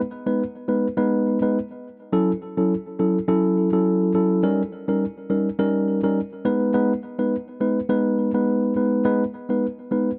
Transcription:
tine electric piano
0.26 G#3 B3 D#4 B4
0.68 G#3 B3 D#4 B4
0.97 G#3 B3 D#4 B4
1.42 G#3 B3 D#4 B4
2.12 F#3 C#4 E4 A4
2.57 F#3 C#4 E4 A4
2.99 F#3 C#4 E4 A4
3.28 F#3 C#4 E4 A4
3.73 F#3 C#4 E4 A4
4.14 F#3 C#4 E4 A4
4.43 G3 C#4 D#4 A#4
4.88 G3 C#4 D#4 A#4
5.30 G3 C#4 D#4 A#4
5.59 G3 C#4 D#4 A#4
6.03 G3 C#4 D#4 A#4
6.45 G#3 B3 D#4 B4
6.74 G#3 B3 D#4 B4
7.19 G#3 B3 D#4 B4
7.61 G#3 B3 D#4 B4
7.89 G#3 B3 D#4 B4
8.34 G#3 B3 D#4 B4
8.76 G#3 B3 D#4 B4
9.05 G#3 B3 D#4 B4
9.49 G#3 B3 D#4 B4
9.91 G#3 B3 D#4 B4

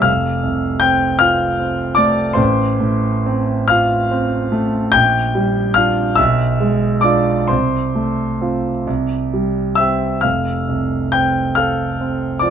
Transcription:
grand piano
0.02 F1 F5 F6
0.43 C2
0.80 C4 G5 G6
1.19 F4 F5 F6
1.59 C4
1.95 A3 D5 D6
2.33 A1 C5 C6
2.80 A2
3.26 C4
3.68 F4 F5 F6
4.11 C4
4.52 A3
4.92 A#1 G5 G6
5.35 G3
5.74 D4 F4 F5 F6
6.16 B1 E5 E6
6.60 G#3
7.01 D4 F4 D5 D6
7.48 C2 C5 C6
7.95 A3
8.41 C4 F4
8.87 C2
9.33 G3
9.75 C4 E5 E6
9.80 G4
10.21 F1 F5 F6
10.69 C2
11.12 C4 G5 G6
11.55 A4 F5 F6
12.01 C4
12.39 F3 D5 D6

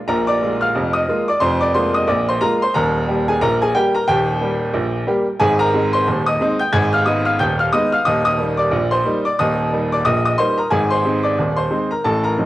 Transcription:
grand piano
0.08 A#1 A#2 A#4 A#5
0.27 D5 D6
0.42 G#3 A#3 F4
0.61 F5 F6
0.75 F1 F2
0.93 D#5 D#6
1.08 G#3 A#3 F4
1.28 D5 D6
1.40 F1 F2 C5 C6
1.61 D5 D6
1.74 G#3 A#3 F4 C5 C6
1.94 D#5 D#6
2.08 A#1 A#2 D5 D6
2.29 C5 C6
2.41 G#3 A#3 F4 A#4 A#5
2.62 C5 C6
2.74 D#1 D#2 A#4 A#5
3.08 G3 A#3 G4
3.28 G#4 G#5
3.41 A#1 A#2 A#4 A#5
3.62 G#4 G#5
3.75 G3 A#3 G4 G5
3.94 A#4 A#5
4.08 D#1 D#2 G4 G5
4.41 G3 A#3 G4
4.73 A#1 A#2
5.07 G3 A#3 G4
5.40 G#1 G#2 G#4 G#5
5.59 A#4 A#5
5.74 G#3 C4 D#4
5.93 C5 C6
6.07 D#1 D#2
6.26 D#5 D#6
6.41 G#3 C4 D#4
6.59 G5 G6
6.73 G#1 G#2 G#5 G#6
6.93 F5 F6
7.06 G#3 B3 D#4 D#5 D#6
7.25 F5 F6
7.39 D#1 D#2 G5 G6
7.59 F5 F6
7.73 G#3 B3 D#4 D#5 D#6
7.92 F5 F6
8.05 D#1 D#2 D#5 D#6
8.25 D#5 D#6
8.39 G3 A#3 D#4
8.57 D5 D6
8.71 A#1 A#2
8.91 C5 C6
9.05 G3 A#3 D#4
9.25 D5 D6
9.39 D#1 D#2 D#5 D#6
9.73 G3 A#3 D#4
9.92 D5 D6
10.05 A#1 A#2 D#5 D#6
10.25 D#5 D#6
10.38 G3 A#3 D#4 C5 C6
10.58 A#4 A#5
10.70 G#1 G#2 G#4 G#5
10.90 C5 C6
11.05 G#3 C4 D#4
11.23 D5 D6
11.39 D#1 D#2
11.56 C5 C6
11.71 G#3 C4 D#4
11.91 A#4 A#5
12.04 A1 A2 A4 A5
12.24 A#4 A#5
12.38 F#3 C4 D#4

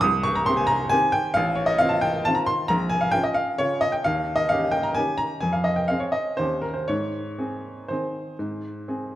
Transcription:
upright piano
0.01 C2 D#6
0.23 C#6
0.36 A#5
0.46 C4 G4 C6
0.57 G#5
0.67 A#5
0.89 D#3 C4 G4 G#5
1.12 G5
1.34 A1 F5
1.55 C#5
1.66 D#5
1.78 C4 F4 F5
1.89 A5
2.01 G5
2.25 D#3 C4 F4 A5
2.35 A#5
2.46 C6
2.68 A#1 A#5
2.89 G#5
3.01 F5
3.11 C#4 F4 G5
3.24 D#5
3.34 F5
3.58 C#3 C#4 F4 C#5
3.81 D#5
3.92 G5
4.04 D#2 F5
4.36 D#5
4.49 C#4 G4 F5
4.71 G5
4.83 A#5
4.95 D#3 C#4 G4 G#5
5.18 A#5
5.41 F2 G#5
5.53 F5
5.64 D#5
5.76 G5
5.88 C4 G#4 F5
6.00 C#5
6.12 D#5
6.37 D#2 D#3 C#4 G4 C5
6.62 A#4
6.74 C5
6.88 G#2 C#5
7.38 C4 G#4
7.88 D#3 C4 G#4 C5
8.39 G#2
8.88 C4 G#4

